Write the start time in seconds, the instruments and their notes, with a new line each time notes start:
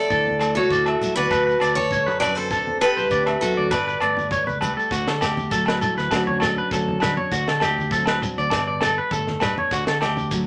Already playing: nylon-string guitar A3 D4, steel-string acoustic guitar A4 D5
0.10 fingered electric bass D2, nylon-string guitar D3 E4, clean electric guitar A4, kick, shekere
0.27 high conga
0.40 nylon-string guitar A3, clean electric guitar A4, cross-stick, closed hi-hat, low agogo, shekere
0.55 fingered electric bass C#2, steel-string acoustic guitar F#4 A4, clean electric guitar C#5, shekere
0.70 fingered electric bass D2, nylon-string guitar E4, clean electric guitar D5, kick, shekere
0.86 clean electric guitar E5, cross-stick, low agogo
1.01 nylon-string guitar F#3 A3, closed hi-hat, low conga, shekere
1.16 fingered electric bass D2, steel-string acoustic guitar F#4 B4, clean electric guitar D5, shekere
1.31 fingered electric bass D2, nylon-string guitar D3 D4, clean electric guitar B4, kick, cross-stick, high conga, low agogo, shekere
1.47 clean electric guitar B4, shekere
1.60 fingered electric bass D2, clean electric guitar D5, cross-stick, closed hi-hat, low agogo, shekere
1.75 steel-string acoustic guitar A4 C#5, high conga, shekere
1.91 nylon-string guitar D4, clean electric guitar C#5, kick, low conga, shekere
2.06 fingered electric bass F#2, clean electric guitar B4, shekere
2.20 nylon-string guitar F#3 C#4, clean electric guitar B4, steel-string acoustic guitar B4 D5, cross-stick, closed hi-hat, low conga, low agogo, shekere
2.35 clean electric guitar A4, steel-string acoustic guitar A4 C5, shekere
2.51 fingered electric bass D2, nylon-string guitar D3, clean electric guitar A4, kick, shekere
2.55 nylon-string guitar C4 D4
2.67 high conga
2.81 steel-string acoustic guitar G4 B4, clean electric guitar A4, cross-stick, closed hi-hat, low agogo, shekere
2.97 fingered electric bass C2, clean electric guitar C5, shekere
3.11 fingered electric bass D2, nylon-string guitar D4, clean electric guitar D5, kick, shekere
3.26 clean electric guitar E5, cross-stick, low agogo, shekere
3.41 nylon-string guitar F#3 C4, steel-string acoustic guitar F#4 A4, closed hi-hat, low conga, shekere
3.57 fingered electric bass D2, clean electric guitar D5
3.71 fingered electric bass G1, nylon-string guitar G2 D4, clean electric guitar B4, steel-string acoustic guitar B4 D5, kick, cross-stick, high conga, low agogo, shekere
3.88 clean electric guitar B4, shekere
4.00 fingered electric bass G1, nylon-string guitar A3, clean electric guitar D5, cross-stick, closed hi-hat, low agogo
4.17 high conga, shekere
4.31 nylon-string guitar D4, clean electric guitar C#5, kick, low conga, shekere
4.47 fingered electric bass C#2, clean electric guitar B4, high conga, shekere
4.61 nylon-string guitar G3 A3, clean electric guitar B4, closed hi-hat, high conga, low conga, low agogo, shekere
4.77 clean electric guitar A4, shekere
4.91 fingered electric bass D2, nylon-string guitar D3, clean electric guitar F#4, kick, snare, shekere
5.07 fingered electric bass D3, clean electric guitar A4, snare
5.21 fingered electric bass D2, clean electric guitar G4, snare, low agogo, shekere
5.37 high conga, shekere
5.51 nylon-string guitar F#3 A3, clean electric guitar A4, kick, shekere
5.66 clean electric guitar B4, snare, low agogo
5.81 nylon-string guitar E4, clean electric guitar A4, low conga, shekere
5.97 fingered electric bass D2, clean electric guitar B4, snare, shekere
6.11 fingered electric bass D2, nylon-string guitar D3 F#3 C#4 D4 F#4, kick, snare, low agogo, shekere
6.27 clean electric guitar C#5, high conga
6.40 clean electric guitar A4, snare, low conga, low agogo, shekere
6.58 clean electric guitar B4
6.71 fingered electric bass D2, nylon-string guitar F#3 C#4, clean electric guitar A4, kick, snare, shekere
6.88 high conga
7.00 fingered electric bass D3, nylon-string guitar D4, clean electric guitar B4, snare, low conga, low agogo, shekere
7.17 clean electric guitar C#5, high conga
7.31 fingered electric bass D2, nylon-string guitar D3, clean electric guitar F#4, kick, shekere
7.48 fingered electric bass D3, clean electric guitar A4, snare
7.60 fingered electric bass D2, clean electric guitar G4, snare, low agogo, shekere
7.78 high conga, shekere
7.91 nylon-string guitar F#3 C4, clean electric guitar A4, kick, shekere
8.06 clean electric guitar B4, snare, low agogo
8.21 nylon-string guitar D4, muted clean electric guitar stroke, low conga, shekere
8.38 fingered electric bass D2, clean electric guitar D5, shekere
8.50 fingered electric bass G1, nylon-string guitar G2, kick, snare, low agogo, shekere
8.67 clean electric guitar D5
8.81 clean electric guitar A4, snare, low conga, low agogo, shekere
8.98 clean electric guitar B4
9.11 fingered electric bass G1, nylon-string guitar A3, clean electric guitar A4, muted nylon-string guitar stroke, kick, shekere
9.27 snare, high conga
9.40 fingered electric bass G2, nylon-string guitar D4, clean electric guitar B4, snare, low conga, low agogo, shekere
9.58 clean electric guitar C#5, high conga
9.71 fingered electric bass D2, nylon-string guitar D3, clean electric guitar F#4, kick, snare, shekere
9.87 fingered electric bass D3, clean electric guitar A4, snare
10.01 fingered electric bass D2, clean electric guitar G4, snare, low agogo
10.17 high conga, shekere
10.31 nylon-string guitar F#3 A3, kick, shekere